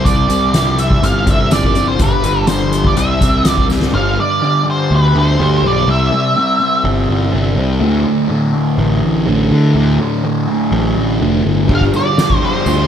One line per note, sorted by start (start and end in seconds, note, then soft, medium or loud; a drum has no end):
0.00 0.26 C2 medium
0.05 0.52 C3 medium
0.05 0.29 G3 medium
0.05 0.27 C4 medium
0.05 0.79 D5 medium
0.05 kick loud
0.05 closed hi-hat medium
0.05 tambourine medium
0.28 0.99 C2 medium
0.28 0.54 G3 soft
0.28 0.54 C4 medium
0.28 closed hi-hat medium
0.28 tambourine medium
0.53 1.00 C3 medium
0.53 1.02 G3 medium
0.53 1.02 C4 medium
0.53 snare loud
0.53 closed hi-hat medium
0.53 tambourine medium
0.78 1.02 E5 medium
0.78 closed hi-hat medium
0.91 kick medium
1.01 1.96 G1 medium
1.01 1.50 C3 medium
1.01 1.28 G3 medium
1.01 1.25 C4 loud
1.01 1.29 F5 medium
1.01 closed hi-hat medium
1.01 tambourine soft
1.26 1.52 G3 medium
1.26 1.52 C4 medium
1.26 kick medium
1.26 closed hi-hat medium
1.31 1.52 E5 medium
1.51 1.98 C3 medium
1.51 1.78 G3 medium
1.51 1.75 C4 medium
1.51 1.86 D5 medium
1.51 snare loud
1.51 closed hi-hat medium
1.51 tambourine medium
1.63 kick medium
1.75 2.01 G3 medium
1.75 1.99 C4 medium
1.75 closed hi-hat soft
1.75 tambourine medium
1.88 2.01 C5 medium
1.99 2.11 G1 medium
1.99 2.46 G2 medium
1.99 2.25 D3 medium
1.99 2.23 G3 loud
1.99 2.48 B4 medium
1.99 kick loud
1.99 closed hi-hat medium
1.99 tambourine medium
2.23 2.93 G1 medium
2.23 2.47 D3 soft
2.23 2.48 G3 medium
2.23 closed hi-hat medium
2.23 tambourine medium
2.47 2.95 G2 medium
2.47 2.95 D3 medium
2.47 2.96 G3 medium
2.47 2.86 C5 medium
2.47 snare loud
2.47 closed hi-hat medium
2.47 tambourine medium
2.73 closed hi-hat medium
2.73 tambourine soft
2.85 2.97 D5 medium
2.85 kick medium
2.95 3.90 C2 medium
2.95 3.43 C3 medium
2.95 3.22 G3 medium
2.95 3.20 C4 medium
2.95 3.49 E5 medium
2.95 closed hi-hat medium
2.95 tambourine soft
3.21 3.44 G3 soft
3.21 3.45 C4 medium
3.21 kick medium
3.21 closed hi-hat medium
3.21 tambourine medium
3.44 3.92 C3 medium
3.44 3.70 G3 medium
3.44 3.68 C4 medium
3.44 snare loud
3.44 closed hi-hat medium
3.44 tambourine medium
3.49 3.66 D5 medium
3.58 kick medium
3.69 3.93 G3 medium
3.69 3.92 C4 medium
3.69 snare medium
3.69 tambourine medium
3.81 snare medium
3.92 4.16 G1 medium
3.92 4.40 G2 medium
3.92 4.19 D3 medium
3.92 4.17 G3 loud
3.92 4.19 F5 loud
4.18 4.41 D3 medium
4.18 4.44 G3 medium
4.18 4.64 D5 loud
4.42 4.91 G2 medium
4.42 4.66 D3 medium
4.42 4.64 G3 medium
4.65 5.39 D3 medium
4.65 5.40 G3 medium
4.71 4.94 C5 medium
4.91 5.13 D2 loud
4.96 5.16 B4 medium
5.15 5.37 D2 medium
5.15 5.67 C5 medium
5.38 5.61 D2 loud
5.38 5.86 G2 medium
5.38 5.64 D3 medium
5.38 5.62 G3 medium
5.62 5.85 B1 medium
5.62 5.87 D3 medium
5.62 5.86 G3 medium
5.67 5.90 D5 medium
5.87 6.09 C2 loud
5.87 6.35 C3 medium
5.87 6.12 G3 loud
5.87 6.11 C4 loud
5.91 6.82 E5 medium
6.11 6.37 G3 medium
6.11 6.39 C4 medium
6.37 6.85 C3 medium
6.37 6.61 G3 medium
6.37 6.60 C4 medium
6.61 7.32 G3 medium
6.61 7.34 C4 medium
6.84 7.07 G1 loud
7.09 7.31 G1 loud
7.33 7.55 G1 medium
7.33 7.80 C3 medium
7.33 7.57 G3 medium
7.33 7.56 C4 medium
7.56 7.79 C2 medium
7.56 7.81 G3 medium
7.56 7.82 C4 medium
7.81 8.27 D2 loud
7.81 8.04 D2 loud
7.81 8.05 A2 loud
7.81 8.04 D3 loud
8.04 8.28 A2 medium
8.04 8.30 D3 medium
8.28 9.26 D2 medium
8.28 8.54 A2 medium
8.28 8.53 D3 medium
8.53 9.26 A2 medium
8.53 9.27 D3 medium
8.78 9.00 A1 loud
9.04 9.26 A1 loud
9.26 9.49 A1 loud
9.26 9.73 D2 medium
9.26 9.52 A2 medium
9.26 9.50 D3 loud
9.51 9.74 A2 medium
9.51 9.74 D3 medium
9.51 9.75 D3 medium
9.74 10.23 D2 medium
9.74 9.97 D2 loud
9.74 10.01 A2 medium
9.74 9.98 D3 loud
10.00 10.24 A2 medium
10.00 10.24 D3 medium
10.24 10.73 D2 medium
10.24 10.49 A2 medium
10.24 10.46 D3 medium
10.47 11.19 A2 medium
10.47 11.20 D3 medium
10.72 10.94 A1 loud
10.96 11.19 A1 medium
11.19 11.43 F1 medium
11.19 11.67 D2 medium
11.19 11.45 A2 medium
11.19 11.43 D3 medium
11.44 11.67 G1 medium
11.44 11.69 A2 medium
11.44 11.68 D3 medium
11.69 11.92 G1 medium
11.69 12.17 G2 medium
11.69 11.94 D3 loud
11.69 11.92 G3 loud
11.69 kick loud
11.69 ride medium
11.75 11.81 F5 medium
11.81 kick medium
11.93 12.18 D3 medium
11.93 12.20 G3 medium
11.93 12.45 D5 medium
11.93 ride medium
11.93 tambourine medium
12.18 12.67 G2 medium
12.18 12.44 D3 medium
12.18 12.42 G3 medium
12.18 snare loud
12.18 ride loud
12.18 tambourine medium
12.30 kick medium
12.42 12.87 D3 medium
12.42 12.87 G3 medium
12.42 12.87 C5 medium
12.42 ride medium
12.66 12.87 D2 loud
12.66 ride medium
12.66 tambourine medium